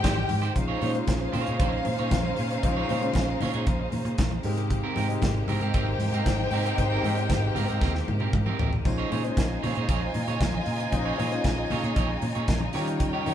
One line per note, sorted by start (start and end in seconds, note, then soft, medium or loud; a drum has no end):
0.00 0.52 D#3 medium
0.00 0.52 G#3 medium
0.00 0.56 G#3 loud
0.00 0.58 B3 medium
0.00 0.52 C4 medium
0.00 0.57 C4 medium
0.00 0.56 D#4 medium
0.00 0.17 D#4 medium
0.00 0.54 G4 medium
0.00 0.55 G4 medium
0.00 0.58 G4 medium
0.00 0.16 G4 loud
0.00 0.58 A#4 loud
0.00 0.15 C5 loud
0.00 0.54 G5 medium
0.00 closed hi-hat medium
0.04 0.23 G#1 loud
0.04 kick loud
0.04 snare loud
0.04 cowbell medium
0.04 high conga medium
0.16 muted clean electric guitar stroke medium
0.16 high conga medium
0.29 0.48 G#2 loud
0.29 muted clean electric guitar stroke soft
0.29 open hi-hat medium
0.29 high conga medium
0.42 0.53 D#4 medium
0.42 0.53 G4 medium
0.42 0.53 C5 medium
0.42 closed hi-hat soft
0.55 0.74 A#1 medium
0.55 4.41 C#3 medium
0.55 0.74 G#3 medium
0.55 12.71 G#3 medium
0.55 0.74 C#4 medium
0.55 4.41 C#4 medium
0.55 0.74 D#4 medium
0.55 4.41 D#4 medium
0.55 0.74 F4 medium
0.55 4.41 C5 medium
0.55 0.74 C5 medium
0.55 4.41 F5 medium
0.55 muted clean electric guitar stroke soft
0.55 kick medium
0.55 closed hi-hat medium
0.55 muted conga soft
0.68 0.80 D#4 medium
0.68 0.80 G#4 medium
0.68 0.81 C#5 medium
0.81 1.00 A#2 medium
0.81 0.91 G#3 medium
0.81 0.91 C#4 medium
0.81 0.92 D#4 medium
0.81 0.91 D#4 medium
0.81 0.91 F4 medium
0.81 0.92 G#4 medium
0.81 0.91 C5 medium
0.81 0.92 C#5 medium
0.81 open hi-hat medium
0.81 muted conga medium
0.94 1.66 G#3 medium
0.94 1.66 C#4 medium
0.94 1.66 D#4 medium
0.94 1.66 F4 medium
0.94 1.67 C5 medium
0.94 muted clean electric guitar stroke soft
0.94 closed hi-hat soft
1.07 1.26 A#1 loud
1.07 muted clean electric guitar stroke soft
1.07 kick loud
1.07 snare loud
1.07 closed hi-hat medium
1.07 high conga medium
1.20 muted clean electric guitar stroke soft
1.32 1.43 A#2 medium
1.32 1.46 D#4 medium
1.32 1.45 G#4 medium
1.32 1.45 C#5 medium
1.32 open hi-hat medium
1.32 muted conga medium
1.32 low conga medium
1.46 1.57 A#2 medium
1.46 1.57 D#4 soft
1.46 1.57 G#4 medium
1.46 1.57 C#5 medium
1.46 closed hi-hat soft
1.59 1.78 A#1 loud
1.59 1.79 D#4 medium
1.59 1.72 G#4 medium
1.59 1.71 C#5 medium
1.59 kick loud
1.59 closed hi-hat medium
1.72 muted clean electric guitar stroke soft
1.85 1.95 A#2 medium
1.85 muted clean electric guitar stroke soft
1.85 open hi-hat medium
1.85 muted conga medium
1.98 2.08 A#2 medium
1.98 2.10 D#4 soft
1.98 2.09 G#4 medium
1.98 2.09 C#5 medium
1.98 closed hi-hat soft
2.11 2.30 A#1 medium
2.11 muted clean electric guitar stroke soft
2.11 kick loud
2.11 snare loud
2.11 closed hi-hat medium
2.11 high conga medium
2.23 muted clean electric guitar stroke soft
2.23 high conga medium
2.36 2.57 A#2 medium
2.36 open hi-hat medium
2.51 muted clean electric guitar stroke soft
2.51 closed hi-hat soft
2.62 2.82 A#1 loud
2.62 2.81 G#3 medium
2.62 2.81 C#4 medium
2.62 2.81 D#4 medium
2.62 2.81 F4 medium
2.62 2.81 C5 medium
2.62 muted clean electric guitar stroke soft
2.62 kick medium
2.62 closed hi-hat medium
2.77 2.89 D#4 medium
2.77 2.90 G#4 medium
2.77 2.90 C#5 medium
2.87 3.08 A#2 medium
2.87 2.97 G#3 medium
2.87 2.97 C#4 medium
2.87 2.97 D#4 medium
2.87 3.00 D#4 medium
2.87 2.98 F4 medium
2.87 3.01 G#4 medium
2.87 2.98 C5 loud
2.87 open hi-hat medium
2.87 muted conga medium
2.91 3.01 C#5 medium
3.01 3.73 G#3 medium
3.01 3.73 C#4 medium
3.01 3.73 D#4 medium
3.01 3.74 F4 medium
3.01 3.74 C5 medium
3.01 muted clean electric guitar stroke soft
3.01 closed hi-hat soft
3.14 3.33 A#1 loud
3.14 muted clean electric guitar stroke soft
3.14 kick medium
3.14 snare loud
3.14 closed hi-hat medium
3.14 high conga medium
3.28 muted clean electric guitar stroke soft
3.41 3.51 A#2 medium
3.41 3.54 D#4 medium
3.41 3.54 G#4 medium
3.41 3.53 C#5 medium
3.41 open hi-hat medium
3.41 muted conga medium
3.41 low conga medium
3.54 3.63 A#2 medium
3.54 3.65 D#4 medium
3.54 3.65 G#4 medium
3.54 3.65 C#5 medium
3.54 closed hi-hat soft
3.67 3.85 A#1 loud
3.67 muted clean electric guitar stroke soft
3.67 kick loud
3.67 closed hi-hat medium
3.80 muted clean electric guitar stroke soft
3.92 4.02 A#2 medium
3.92 open hi-hat medium
3.92 muted conga medium
4.05 4.14 A#2 loud
4.05 muted clean electric guitar stroke medium
4.05 closed hi-hat soft
4.18 4.37 A#1 medium
4.18 muted clean electric guitar stroke soft
4.18 kick loud
4.18 snare loud
4.18 closed hi-hat medium
4.18 high conga medium
4.31 muted clean electric guitar stroke medium
4.31 high conga medium
4.43 4.81 G#2 medium
4.43 8.82 C3 medium
4.43 4.86 G#3 medium
4.43 8.82 A#3 medium
4.43 4.86 C4 medium
4.43 4.86 D#4 medium
4.43 4.86 G4 medium
4.43 8.82 G4 medium
4.43 4.87 A#4 loud
4.43 open hi-hat medium
4.57 muted clean electric guitar stroke medium
4.57 closed hi-hat soft
4.70 muted clean electric guitar stroke soft
4.70 kick medium
4.70 closed hi-hat medium
4.70 muted conga soft
4.84 4.94 C4 medium
4.84 4.95 G4 medium
4.84 4.95 A#4 medium
4.94 5.15 G#2 loud
4.94 5.04 G#3 medium
4.94 5.05 C4 medium
4.94 5.07 C4 medium
4.94 5.05 D#4 medium
4.94 5.05 G4 medium
4.94 5.07 G4 medium
4.94 5.05 A#4 medium
4.94 5.07 A#4 medium
4.94 open hi-hat medium
4.94 muted conga medium
5.08 5.80 G#3 medium
5.08 5.81 C4 medium
5.08 5.81 D#4 medium
5.08 5.81 G4 medium
5.08 5.81 A#4 medium
5.08 muted clean electric guitar stroke soft
5.08 closed hi-hat soft
5.22 5.41 G#1 loud
5.22 muted clean electric guitar stroke soft
5.22 kick loud
5.22 snare loud
5.22 closed hi-hat medium
5.22 high conga medium
5.35 muted clean electric guitar stroke soft
5.48 5.57 G#2 medium
5.48 5.62 C4 medium
5.48 8.56 D#4 medium
5.48 5.61 G4 medium
5.48 5.60 A#4 loud
5.48 8.56 C5 medium
5.48 8.56 G5 medium
5.48 open hi-hat medium
5.48 muted conga soft
5.48 low conga medium
5.61 5.70 G#2 medium
5.61 5.73 C4 medium
5.61 5.72 G4 medium
5.61 5.72 A#4 medium
5.61 closed hi-hat soft
5.74 5.93 G#1 loud
5.74 5.88 C4 medium
5.74 5.87 G4 medium
5.74 5.87 A#4 loud
5.74 kick loud
5.74 closed hi-hat medium
5.88 muted clean electric guitar stroke soft
5.99 6.08 G#2 medium
5.99 muted clean electric guitar stroke soft
5.99 open hi-hat medium
5.99 muted conga medium
6.12 6.22 G#2 medium
6.12 6.25 C4 soft
6.12 6.24 G4 medium
6.12 6.24 A#4 medium
6.12 closed hi-hat soft
6.26 6.44 G#1 medium
6.26 muted clean electric guitar stroke soft
6.26 kick medium
6.26 snare loud
6.26 closed hi-hat medium
6.26 high conga medium
6.40 muted clean electric guitar stroke soft
6.40 high conga medium
6.51 6.70 G#2 loud
6.51 6.65 C4 medium
6.51 6.65 G4 loud
6.51 6.64 A#4 medium
6.51 open hi-hat medium
6.66 6.76 C4 medium
6.66 6.76 G4 medium
6.66 6.76 A#4 medium
6.66 closed hi-hat soft
6.77 6.97 G#1 loud
6.77 6.95 G#3 medium
6.77 6.96 C4 medium
6.77 6.96 D#4 medium
6.77 6.96 G4 medium
6.77 6.96 C5 loud
6.77 muted clean electric guitar stroke soft
6.77 kick medium
6.77 closed hi-hat medium
6.77 muted conga soft
6.92 7.04 C4 medium
6.92 7.05 G4 medium
6.92 7.05 A#4 medium
7.03 7.31 G#2 loud
7.03 7.12 G#3 medium
7.03 7.13 C4 medium
7.03 7.15 C4 medium
7.03 7.13 D#4 medium
7.03 7.13 G4 medium
7.03 7.15 G4 medium
7.03 7.13 A#4 medium
7.03 7.16 A#4 medium
7.03 open hi-hat medium
7.03 muted conga medium
7.15 7.88 G#3 medium
7.15 7.88 C4 medium
7.15 7.88 D#4 medium
7.15 7.89 G4 medium
7.15 7.89 C5 medium
7.15 muted clean electric guitar stroke soft
7.15 closed hi-hat soft
7.29 7.48 G#1 loud
7.29 muted clean electric guitar stroke soft
7.29 kick loud
7.29 snare medium
7.29 closed hi-hat medium
7.29 high conga medium
7.42 muted clean electric guitar stroke soft
7.55 7.65 G#2 medium
7.55 7.68 C4 medium
7.55 7.68 G4 medium
7.55 7.67 A#4 loud
7.55 open hi-hat medium
7.55 muted conga medium
7.55 low conga medium
7.68 7.78 G#2 medium
7.68 7.80 C4 soft
7.68 7.79 G4 soft
7.68 7.79 A#4 medium
7.68 closed hi-hat soft
7.81 8.00 D#2 loud
7.81 7.95 C4 medium
7.81 7.94 G4 medium
7.81 7.93 A#4 medium
7.81 kick loud
7.81 snare medium
7.94 muted clean electric guitar stroke soft
7.94 snare medium
8.07 8.26 G#2 medium
8.07 muted clean electric guitar stroke soft
8.07 muted conga medium
8.07 low conga medium
8.20 8.31 C4 soft
8.20 8.31 G4 medium
8.20 8.31 A#4 medium
8.20 high tom medium
8.33 8.52 G#2 medium
8.33 muted clean electric guitar stroke soft
8.33 kick loud
8.33 mid tom medium
8.33 high conga medium
8.46 8.58 C4 medium
8.46 8.58 G4 medium
8.46 8.59 A#4 medium
8.46 high conga medium
8.59 8.78 A1 medium
8.59 8.70 C4 medium
8.59 8.70 G4 medium
8.59 8.70 A#4 medium
8.59 floor tom loud
8.73 muted clean electric guitar stroke soft
8.73 floor tom medium
8.84 9.04 A#1 medium
8.84 13.34 C#3 medium
8.84 9.03 G#3 medium
8.84 9.03 C#4 medium
8.84 9.03 D#4 medium
8.84 13.34 D#4 medium
8.84 12.70 F4 medium
8.84 9.03 F4 medium
8.84 10.90 C5 medium
8.84 9.03 C5 medium
8.84 12.70 D#5 medium
8.84 12.71 G#5 medium
8.84 muted clean electric guitar stroke soft
8.84 kick medium
8.84 splash medium
8.84 muted conga soft
8.98 9.10 D#4 medium
8.98 9.11 G#4 medium
8.98 9.11 C#5 medium
9.10 9.30 A#2 medium
9.10 9.19 G#3 medium
9.10 9.20 C#4 medium
9.10 9.20 D#4 medium
9.10 9.22 D#4 medium
9.10 9.20 F4 medium
9.10 9.22 G#4 medium
9.10 9.20 C5 medium
9.10 9.22 C#5 medium
9.10 open hi-hat medium
9.10 muted conga medium
9.23 9.95 G#3 medium
9.23 9.95 C#4 medium
9.23 9.96 D#4 medium
9.23 9.96 F4 medium
9.23 9.96 C5 medium
9.23 muted clean electric guitar stroke soft
9.23 closed hi-hat soft
9.37 9.56 A#1 loud
9.37 muted clean electric guitar stroke soft
9.37 kick loud
9.37 snare loud
9.37 closed hi-hat medium
9.37 high conga medium
9.50 muted clean electric guitar stroke soft
9.63 9.73 A#2 medium
9.63 9.76 D#4 medium
9.63 9.76 G#4 medium
9.63 9.75 C#5 medium
9.63 open hi-hat medium
9.63 muted conga soft
9.63 low conga medium
9.75 9.86 A#2 medium
9.75 9.87 D#4 medium
9.75 9.87 G#4 medium
9.75 9.87 C#5 medium
9.75 closed hi-hat soft
9.89 10.07 A#1 loud
9.89 10.02 D#4 medium
9.89 10.01 G#4 medium
9.89 10.00 C#5 loud
9.89 kick loud
9.89 closed hi-hat medium
10.01 muted clean electric guitar stroke soft
10.14 10.24 A#2 medium
10.14 muted clean electric guitar stroke soft
10.14 open hi-hat medium
10.14 muted conga medium
10.28 10.37 A#2 medium
10.28 10.39 D#4 soft
10.28 10.39 G#4 soft
10.28 10.38 C#5 medium
10.28 closed hi-hat soft
10.40 10.59 A#1 medium
10.40 muted clean electric guitar stroke soft
10.40 kick loud
10.40 snare loud
10.40 closed hi-hat medium
10.40 high conga medium
10.54 muted clean electric guitar stroke soft
10.54 high conga medium
10.66 10.85 A#2 medium
10.66 open hi-hat medium
10.80 muted clean electric guitar stroke soft
10.80 closed hi-hat soft
10.91 11.11 A#1 medium
10.91 11.10 G#3 medium
10.91 11.10 C#4 medium
10.91 12.73 C#4 medium
10.91 11.10 D#4 medium
10.91 11.10 F4 medium
10.91 11.11 C5 medium
10.91 muted clean electric guitar stroke soft
10.91 kick medium
10.91 closed hi-hat medium
10.91 muted conga soft
11.06 11.17 D#4 medium
11.06 11.18 G#4 medium
11.06 11.18 C#5 medium
11.17 11.37 A#2 medium
11.17 11.27 G#3 medium
11.17 11.27 C#4 medium
11.17 11.27 D#4 medium
11.17 11.29 D#4 medium
11.17 11.27 F4 medium
11.17 11.29 G#4 medium
11.17 11.27 C5 medium
11.17 11.30 C#5 medium
11.17 open hi-hat medium
11.17 muted conga medium
11.30 12.03 G#3 medium
11.30 12.03 C#4 medium
11.30 12.03 D#4 medium
11.30 12.03 F4 medium
11.30 12.04 C5 medium
11.30 muted clean electric guitar stroke soft
11.30 closed hi-hat soft
11.44 11.63 A#1 loud
11.44 muted clean electric guitar stroke soft
11.44 kick medium
11.44 snare loud
11.44 closed hi-hat medium
11.44 high conga medium
11.58 muted clean electric guitar stroke soft
11.70 11.80 A#2 medium
11.70 11.84 D#4 medium
11.70 11.83 G#4 medium
11.70 11.83 C#5 medium
11.70 open hi-hat medium
11.70 muted conga medium
11.70 low conga medium
11.83 11.93 A#2 medium
11.83 11.95 D#4 medium
11.83 11.95 G#4 medium
11.83 11.95 C#5 medium
11.83 closed hi-hat soft
11.96 12.15 A#1 loud
11.96 12.10 D#4 medium
11.96 12.09 G#4 loud
11.96 12.09 C#5 medium
11.96 kick loud
11.96 closed hi-hat medium
12.10 muted clean electric guitar stroke soft
12.22 12.32 A#2 loud
12.22 muted clean electric guitar stroke soft
12.22 open hi-hat medium
12.22 muted conga medium
12.35 12.45 A#2 medium
12.35 12.47 D#4 soft
12.35 12.46 G#4 medium
12.35 12.46 C#5 medium
12.35 closed hi-hat soft
12.48 12.67 A#1 loud
12.48 kick loud
12.48 snare loud
12.48 closed hi-hat medium
12.48 high conga medium
12.61 muted clean electric guitar stroke medium
12.61 high conga medium
12.73 13.11 D#3 loud
12.73 12.80 F3 medium
12.73 13.34 G3 medium
12.73 13.34 A#3 medium
12.73 13.16 C#4 medium
12.73 12.87 D#4 medium
12.73 13.16 D#4 medium
12.73 13.34 D#4 medium
12.73 13.16 F4 medium
12.73 12.87 G4 medium
12.73 13.16 A#4 loud
12.73 13.34 C#5 medium
12.73 12.86 C#5 medium
12.73 13.34 G5 medium
12.73 open hi-hat medium
12.80 13.18 G3 medium
12.87 muted clean electric guitar stroke soft
12.87 closed hi-hat soft
13.00 muted clean electric guitar stroke soft
13.00 kick loud
13.00 closed hi-hat medium
13.00 muted conga soft
13.13 13.25 D#4 medium
13.13 13.26 G4 medium
13.13 13.27 C#5 medium
13.25 13.34 D#3 loud
13.25 13.34 G3 medium
13.25 13.34 C#4 medium
13.25 13.34 D#4 medium
13.25 13.34 F4 medium
13.25 13.34 G4 medium
13.25 13.34 A#4 medium
13.25 13.34 C#5 medium
13.25 open hi-hat medium
13.25 muted conga medium